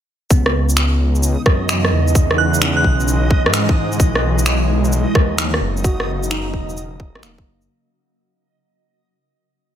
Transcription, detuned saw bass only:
0.30 1.36 C#2 medium
1.46 1.91 F#2 medium
1.92 2.86 E2 medium
2.84 3.47 B1 loud
3.46 3.99 G#2 medium
4.00 5.06 B1 loud
5.15 5.60 D#2 medium
5.61 6.55 F#1 medium
6.54 7.17 E1 loud
7.15 7.24 A#1 medium
7.23 7.45 E1 medium
7.46 7.68 F#1 loud

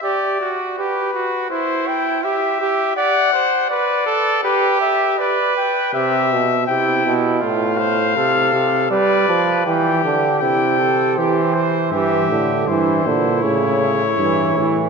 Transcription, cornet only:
0.04 0.51 D5 medium
0.78 1.48 B4 medium
1.50 1.89 C5 medium
1.88 2.24 G5 medium
2.24 2.96 E5 medium
2.97 3.70 F#5 medium
3.70 4.43 D5 medium
4.44 4.80 B4 medium
4.81 5.20 E5 medium
5.19 5.56 D5 medium
5.57 5.93 G5 medium
5.94 6.67 E5 medium
6.67 7.15 G5 medium
7.42 8.87 F5 medium
8.91 9.64 D5 medium
9.65 10.39 G5 medium
10.40 11.14 G5 medium
11.16 11.90 C5 medium
11.91 12.69 E5 medium
12.67 13.45 C5 medium
13.43 14.89 C#5 medium

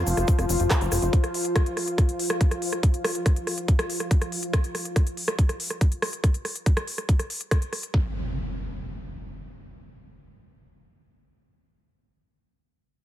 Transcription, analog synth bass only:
0.07 0.14 F1 loud
0.17 0.25 F1 medium
0.39 0.46 F1 medium
0.49 0.57 F1 loud
0.60 0.67 F1 medium
0.81 0.89 F#1 medium
0.92 0.99 F1 loud
1.02 1.10 F1 medium

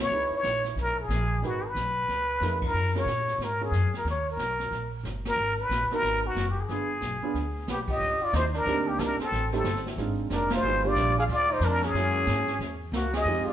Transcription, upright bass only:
0.10 0.29 C#2 medium
0.30 muted upright bass stroke soft
0.43 0.75 A#1 medium
0.76 1.08 B1 medium
1.08 1.41 A#1 medium
1.42 1.74 G#1 medium
1.75 2.07 B1 medium
2.08 2.40 C#2 medium
2.41 2.73 F2 medium
2.74 3.05 F#2 medium
3.06 3.38 A#2 medium
3.38 3.71 G#2 medium
3.71 3.91 F#2 medium
3.92 muted upright bass stroke soft
4.04 4.37 D#2 medium
4.37 4.70 B1 medium
4.71 5.03 A#1 medium
5.03 5.36 G1 medium
5.36 5.69 G#1 medium
5.69 5.89 A#1 medium
5.90 muted upright bass stroke soft
6.02 6.35 G#1 medium
6.35 6.68 F#1 medium
6.69 7.00 G1 medium
7.01 7.20 B1 medium
7.22 muted upright bass stroke soft
7.34 7.66 D2 medium
7.67 7.99 B1 medium
8.00 8.19 C2 medium
8.20 muted upright bass stroke soft
8.33 8.65 D#2 medium
8.66 8.98 D2 medium
8.99 9.18 C2 medium
9.19 muted upright bass stroke soft
9.31 9.64 A1 medium
9.64 9.97 G1 medium
9.97 10.29 G#1 medium
10.30 10.62 F1 medium
10.63 10.94 G1 medium
10.95 11.27 A#1 medium
11.28 11.60 D2 medium
11.60 11.93 F2 medium
11.94 12.26 F#2 medium
12.27 12.58 G#2 medium
12.59 12.91 E2 medium
12.92 13.24 C#2 medium
13.25 13.44 F2 medium
13.46 muted upright bass stroke soft

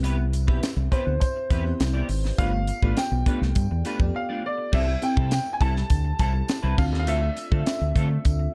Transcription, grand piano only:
0.92 1.19 C5 medium
1.20 2.42 C5 medium
2.38 2.99 F5 loud
2.98 4.40 G5 medium
4.16 4.45 F5 medium
4.46 4.75 D5 medium
4.74 5.04 E5 medium
5.03 5.30 G5 medium
5.32 5.55 G5 medium
5.53 5.60 G#5 medium
5.61 6.18 A5 loud
6.20 6.80 A5 medium
6.78 6.83 F5 medium
6.99 7.07 F5 medium
7.08 8.54 E5 medium

